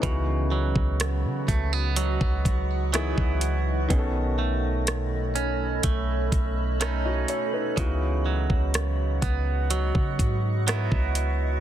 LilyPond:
<<
  \new Staff \with { instrumentName = "Ambient pad" } { \time 4/4 \key cis \minor \tempo 4 = 62 << { b''2 cis'''2 | b''1~ | b''2 cis'''2 | } \\ { <fis' dis'' fis''>1 | <a' cis''>1 | <fis' dis'' fis''>1 | } >> }
  \new Staff \with { instrumentName = "Grand piano" } { \time 4/4 \key cis \minor << { b'16 r2. r8. | r2. r16 <fis' dis''>16 cis''16 <dis' b'>16~ | <dis' b'>16 r2. r8. | } \\ { <e b dis' fis'>2. <e b dis' gis'>4 | <dis b cis' gis' a'>1 | <e b dis' fis'>1 | } >> }
  \new Staff \with { instrumentName = "Clean electric guitar" } { \time 4/4 \key cis \minor cis8 fis4 a16 b16 fis4 <fis b e'>4 | b,8 a4 cis'8 a4 <a cis' dis'>4 | cis8 fis4 b8 fis4 <fis b e'>4 | }
  \new Staff \with { instrumentName = "808-style bass" } { \clef bass \time 4/4 \key cis \minor cis,8. cis,8 cis16 cis,8. cis,4 cis,8. | b,,2 b,,8 b,,4 r8 | cis,8. cis,8. cis,8. cis16 gis,8. cis,8. | }
  \new DrumStaff \with { instrumentName = "Drums" } \drummode { \time 4/4 <hh bd>8. bd16 <hh ss>8 <hh bd>8 hh16 bd16 <hh bd>8 <hh ss>16 bd16 hh8 | <hh bd>4 <hh ss>8 hh8 <hh bd>8 <hh bd>8 <hh ss>8 hh8 | <hh bd>8. bd16 <hh ss>8 <hh bd>8 hh16 bd16 <hh bd>8 <hh ss>16 bd16 hh8 | }
>>